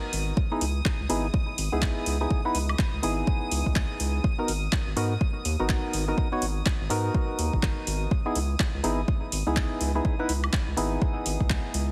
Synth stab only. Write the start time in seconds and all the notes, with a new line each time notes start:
Already playing: B3 D#4 F#4 A#4
0.51 B3 D#4 E4 G#4
1.09 B3 D#4 E4 G#4
1.72 B3 D#4 E4 G#4
2.21 B3 D#4 E4 G#4
2.45 B3 D#4 E4 B4
3.02 B3 D#4 E4 G#4
4.39 B3 D#4 F#4 A#4
4.96 B3 D#4 F#4 A#4
5.60 B3 D#4 F#4 A#4
6.08 B3 D#4 F#4 A#4
6.32 B3 D#4 F#4 C#5
6.90 B3 D#4 F#4 A#4
8.26 B3 D#4 E4 G#4
8.84 B3 D#4 E4 G#4
9.47 B3 D#4 E4 G#4
9.95 B3 D#4 E4 G#4
10.19 B3 D#4 E4 B4
10.77 B3 D#4 E4 G#4